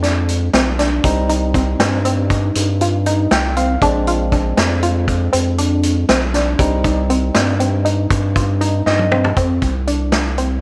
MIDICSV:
0, 0, Header, 1, 5, 480
1, 0, Start_track
1, 0, Tempo, 504626
1, 989, Time_signature, 11, 3, 24, 8
1, 10093, End_track
2, 0, Start_track
2, 0, Title_t, "Synth arpeggio sound"
2, 0, Program_c, 0, 84
2, 25, Note_on_c, 0, 62, 70
2, 381, Note_off_c, 0, 62, 0
2, 513, Note_on_c, 0, 60, 83
2, 689, Note_off_c, 0, 60, 0
2, 752, Note_on_c, 0, 62, 72
2, 1105, Note_off_c, 0, 62, 0
2, 1230, Note_on_c, 0, 63, 77
2, 1407, Note_off_c, 0, 63, 0
2, 1471, Note_on_c, 0, 60, 83
2, 1647, Note_off_c, 0, 60, 0
2, 1711, Note_on_c, 0, 60, 88
2, 1887, Note_off_c, 0, 60, 0
2, 1949, Note_on_c, 0, 60, 84
2, 2126, Note_off_c, 0, 60, 0
2, 2190, Note_on_c, 0, 63, 69
2, 2544, Note_off_c, 0, 63, 0
2, 2676, Note_on_c, 0, 65, 71
2, 2851, Note_off_c, 0, 65, 0
2, 2915, Note_on_c, 0, 63, 81
2, 3267, Note_off_c, 0, 63, 0
2, 3395, Note_on_c, 0, 60, 74
2, 3570, Note_off_c, 0, 60, 0
2, 3637, Note_on_c, 0, 62, 102
2, 3811, Note_off_c, 0, 62, 0
2, 3877, Note_on_c, 0, 65, 81
2, 4051, Note_off_c, 0, 65, 0
2, 4112, Note_on_c, 0, 62, 72
2, 4466, Note_off_c, 0, 62, 0
2, 4593, Note_on_c, 0, 65, 78
2, 4946, Note_off_c, 0, 65, 0
2, 5066, Note_on_c, 0, 60, 89
2, 5245, Note_off_c, 0, 60, 0
2, 5311, Note_on_c, 0, 62, 73
2, 5665, Note_off_c, 0, 62, 0
2, 5795, Note_on_c, 0, 60, 85
2, 5970, Note_off_c, 0, 60, 0
2, 6033, Note_on_c, 0, 62, 77
2, 6386, Note_off_c, 0, 62, 0
2, 6512, Note_on_c, 0, 63, 72
2, 6688, Note_off_c, 0, 63, 0
2, 6752, Note_on_c, 0, 60, 76
2, 6929, Note_off_c, 0, 60, 0
2, 6990, Note_on_c, 0, 60, 84
2, 7167, Note_off_c, 0, 60, 0
2, 7229, Note_on_c, 0, 60, 70
2, 7406, Note_off_c, 0, 60, 0
2, 7466, Note_on_c, 0, 63, 70
2, 7822, Note_off_c, 0, 63, 0
2, 7951, Note_on_c, 0, 65, 71
2, 8128, Note_off_c, 0, 65, 0
2, 8188, Note_on_c, 0, 63, 79
2, 8543, Note_off_c, 0, 63, 0
2, 8672, Note_on_c, 0, 60, 77
2, 8848, Note_off_c, 0, 60, 0
2, 8912, Note_on_c, 0, 60, 83
2, 9266, Note_off_c, 0, 60, 0
2, 9393, Note_on_c, 0, 62, 69
2, 9746, Note_off_c, 0, 62, 0
2, 9875, Note_on_c, 0, 60, 71
2, 10050, Note_off_c, 0, 60, 0
2, 10093, End_track
3, 0, Start_track
3, 0, Title_t, "Tine electric piano"
3, 0, Program_c, 1, 4
3, 0, Note_on_c, 1, 56, 65
3, 0, Note_on_c, 1, 60, 57
3, 0, Note_on_c, 1, 62, 81
3, 948, Note_off_c, 1, 56, 0
3, 950, Note_off_c, 1, 60, 0
3, 952, Note_off_c, 1, 62, 0
3, 989, Note_on_c, 1, 55, 70
3, 993, Note_on_c, 1, 60, 60
3, 999, Note_on_c, 1, 63, 76
3, 3154, Note_on_c, 1, 79, 66
3, 3376, Note_off_c, 1, 79, 0
3, 3393, Note_on_c, 1, 77, 61
3, 3592, Note_off_c, 1, 55, 0
3, 3594, Note_off_c, 1, 60, 0
3, 3597, Note_off_c, 1, 63, 0
3, 3615, Note_off_c, 1, 77, 0
3, 3629, Note_on_c, 1, 56, 69
3, 3636, Note_on_c, 1, 60, 69
3, 3641, Note_on_c, 1, 62, 75
3, 6232, Note_off_c, 1, 56, 0
3, 6235, Note_off_c, 1, 60, 0
3, 6238, Note_off_c, 1, 62, 0
3, 6269, Note_on_c, 1, 55, 72
3, 6272, Note_on_c, 1, 60, 66
3, 6281, Note_on_c, 1, 63, 77
3, 8431, Note_on_c, 1, 75, 71
3, 8872, Note_off_c, 1, 55, 0
3, 8874, Note_off_c, 1, 60, 0
3, 8878, Note_off_c, 1, 63, 0
3, 8878, Note_off_c, 1, 75, 0
3, 10093, End_track
4, 0, Start_track
4, 0, Title_t, "Sub bass"
4, 0, Program_c, 2, 38
4, 0, Note_on_c, 2, 41, 104
4, 473, Note_off_c, 2, 41, 0
4, 509, Note_on_c, 2, 35, 86
4, 951, Note_off_c, 2, 35, 0
4, 988, Note_on_c, 2, 36, 97
4, 1671, Note_off_c, 2, 36, 0
4, 1704, Note_on_c, 2, 43, 106
4, 2389, Note_off_c, 2, 43, 0
4, 2432, Note_on_c, 2, 43, 105
4, 3113, Note_off_c, 2, 43, 0
4, 3152, Note_on_c, 2, 36, 97
4, 3594, Note_off_c, 2, 36, 0
4, 3631, Note_on_c, 2, 34, 94
4, 4313, Note_off_c, 2, 34, 0
4, 4353, Note_on_c, 2, 41, 103
4, 5034, Note_off_c, 2, 41, 0
4, 5077, Note_on_c, 2, 41, 99
4, 5756, Note_off_c, 2, 41, 0
4, 5792, Note_on_c, 2, 35, 101
4, 6233, Note_off_c, 2, 35, 0
4, 6268, Note_on_c, 2, 36, 100
4, 6951, Note_off_c, 2, 36, 0
4, 6996, Note_on_c, 2, 43, 101
4, 7675, Note_off_c, 2, 43, 0
4, 7708, Note_on_c, 2, 43, 111
4, 8392, Note_off_c, 2, 43, 0
4, 8431, Note_on_c, 2, 43, 87
4, 8873, Note_off_c, 2, 43, 0
4, 8908, Note_on_c, 2, 41, 95
4, 9129, Note_off_c, 2, 41, 0
4, 9152, Note_on_c, 2, 36, 82
4, 10074, Note_off_c, 2, 36, 0
4, 10093, End_track
5, 0, Start_track
5, 0, Title_t, "Drums"
5, 32, Note_on_c, 9, 38, 32
5, 32, Note_on_c, 9, 42, 58
5, 127, Note_off_c, 9, 38, 0
5, 127, Note_off_c, 9, 42, 0
5, 271, Note_on_c, 9, 42, 56
5, 366, Note_off_c, 9, 42, 0
5, 509, Note_on_c, 9, 38, 96
5, 509, Note_on_c, 9, 42, 75
5, 604, Note_off_c, 9, 38, 0
5, 604, Note_off_c, 9, 42, 0
5, 751, Note_on_c, 9, 38, 35
5, 751, Note_on_c, 9, 42, 60
5, 846, Note_off_c, 9, 38, 0
5, 846, Note_off_c, 9, 42, 0
5, 988, Note_on_c, 9, 42, 80
5, 989, Note_on_c, 9, 36, 97
5, 1084, Note_off_c, 9, 36, 0
5, 1084, Note_off_c, 9, 42, 0
5, 1229, Note_on_c, 9, 42, 59
5, 1325, Note_off_c, 9, 42, 0
5, 1468, Note_on_c, 9, 36, 68
5, 1469, Note_on_c, 9, 42, 57
5, 1564, Note_off_c, 9, 36, 0
5, 1564, Note_off_c, 9, 42, 0
5, 1711, Note_on_c, 9, 38, 109
5, 1711, Note_on_c, 9, 42, 85
5, 1806, Note_off_c, 9, 38, 0
5, 1806, Note_off_c, 9, 42, 0
5, 1949, Note_on_c, 9, 42, 66
5, 2044, Note_off_c, 9, 42, 0
5, 2189, Note_on_c, 9, 36, 65
5, 2191, Note_on_c, 9, 42, 58
5, 2284, Note_off_c, 9, 36, 0
5, 2286, Note_off_c, 9, 42, 0
5, 2428, Note_on_c, 9, 42, 82
5, 2523, Note_off_c, 9, 42, 0
5, 2671, Note_on_c, 9, 42, 58
5, 2766, Note_off_c, 9, 42, 0
5, 2911, Note_on_c, 9, 42, 56
5, 3006, Note_off_c, 9, 42, 0
5, 3150, Note_on_c, 9, 38, 113
5, 3150, Note_on_c, 9, 42, 77
5, 3245, Note_off_c, 9, 38, 0
5, 3245, Note_off_c, 9, 42, 0
5, 3391, Note_on_c, 9, 42, 58
5, 3486, Note_off_c, 9, 42, 0
5, 3631, Note_on_c, 9, 36, 103
5, 3631, Note_on_c, 9, 42, 80
5, 3726, Note_off_c, 9, 36, 0
5, 3727, Note_off_c, 9, 42, 0
5, 3872, Note_on_c, 9, 42, 56
5, 3967, Note_off_c, 9, 42, 0
5, 4111, Note_on_c, 9, 36, 64
5, 4111, Note_on_c, 9, 42, 49
5, 4206, Note_off_c, 9, 36, 0
5, 4206, Note_off_c, 9, 42, 0
5, 4351, Note_on_c, 9, 38, 113
5, 4351, Note_on_c, 9, 42, 82
5, 4446, Note_off_c, 9, 38, 0
5, 4446, Note_off_c, 9, 42, 0
5, 4590, Note_on_c, 9, 42, 54
5, 4685, Note_off_c, 9, 42, 0
5, 4831, Note_on_c, 9, 36, 62
5, 4831, Note_on_c, 9, 42, 56
5, 4926, Note_off_c, 9, 36, 0
5, 4926, Note_off_c, 9, 42, 0
5, 5070, Note_on_c, 9, 42, 82
5, 5165, Note_off_c, 9, 42, 0
5, 5310, Note_on_c, 9, 42, 64
5, 5405, Note_off_c, 9, 42, 0
5, 5547, Note_on_c, 9, 42, 63
5, 5642, Note_off_c, 9, 42, 0
5, 5791, Note_on_c, 9, 38, 99
5, 5791, Note_on_c, 9, 42, 82
5, 5886, Note_off_c, 9, 38, 0
5, 5886, Note_off_c, 9, 42, 0
5, 6031, Note_on_c, 9, 38, 35
5, 6031, Note_on_c, 9, 42, 57
5, 6126, Note_off_c, 9, 38, 0
5, 6126, Note_off_c, 9, 42, 0
5, 6270, Note_on_c, 9, 36, 117
5, 6270, Note_on_c, 9, 42, 86
5, 6365, Note_off_c, 9, 36, 0
5, 6365, Note_off_c, 9, 42, 0
5, 6510, Note_on_c, 9, 36, 77
5, 6510, Note_on_c, 9, 42, 63
5, 6605, Note_off_c, 9, 36, 0
5, 6605, Note_off_c, 9, 42, 0
5, 6752, Note_on_c, 9, 42, 58
5, 6847, Note_off_c, 9, 42, 0
5, 6988, Note_on_c, 9, 38, 112
5, 6988, Note_on_c, 9, 42, 80
5, 7083, Note_off_c, 9, 38, 0
5, 7083, Note_off_c, 9, 42, 0
5, 7230, Note_on_c, 9, 42, 60
5, 7325, Note_off_c, 9, 42, 0
5, 7470, Note_on_c, 9, 42, 54
5, 7565, Note_off_c, 9, 42, 0
5, 7709, Note_on_c, 9, 36, 110
5, 7711, Note_on_c, 9, 42, 80
5, 7805, Note_off_c, 9, 36, 0
5, 7806, Note_off_c, 9, 42, 0
5, 7951, Note_on_c, 9, 36, 71
5, 7953, Note_on_c, 9, 42, 57
5, 8046, Note_off_c, 9, 36, 0
5, 8048, Note_off_c, 9, 42, 0
5, 8191, Note_on_c, 9, 42, 53
5, 8286, Note_off_c, 9, 42, 0
5, 8430, Note_on_c, 9, 38, 53
5, 8525, Note_off_c, 9, 38, 0
5, 8551, Note_on_c, 9, 48, 58
5, 8647, Note_off_c, 9, 48, 0
5, 8672, Note_on_c, 9, 45, 83
5, 8767, Note_off_c, 9, 45, 0
5, 8793, Note_on_c, 9, 43, 83
5, 8888, Note_off_c, 9, 43, 0
5, 8909, Note_on_c, 9, 42, 71
5, 8910, Note_on_c, 9, 36, 91
5, 9004, Note_off_c, 9, 42, 0
5, 9005, Note_off_c, 9, 36, 0
5, 9150, Note_on_c, 9, 42, 57
5, 9151, Note_on_c, 9, 36, 66
5, 9245, Note_off_c, 9, 42, 0
5, 9246, Note_off_c, 9, 36, 0
5, 9392, Note_on_c, 9, 42, 55
5, 9487, Note_off_c, 9, 42, 0
5, 9627, Note_on_c, 9, 38, 106
5, 9627, Note_on_c, 9, 42, 76
5, 9722, Note_off_c, 9, 38, 0
5, 9722, Note_off_c, 9, 42, 0
5, 9871, Note_on_c, 9, 42, 54
5, 9966, Note_off_c, 9, 42, 0
5, 10093, End_track
0, 0, End_of_file